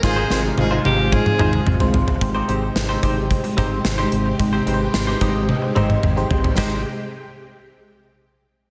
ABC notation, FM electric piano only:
X:1
M:4/4
L:1/16
Q:1/4=110
K:Ab
V:1 name="FM electric piano"
[A,CEFc]2 [A,CEFc]3 [A,CEFA]3 [A,CEFc]2 [A,CEFc]3 [A,CEFc]3 | [A,EGc]2 [A,EGc]4 [A,EGc]4 [A,EGc]3 [A,EGc]3 | [A,EGc]2 [A,EG_c=c]4 [A,EGe]4 [A,EGc]3 [A,EGc]3 | [A,EGc]2 z12 z2 |]
V:2 name="FM electric piano" clef=bass
A,,6 z8 z2 | A,,6 z8 z2 | A,,6 z8 z2 | A,,,2 z12 z2 |]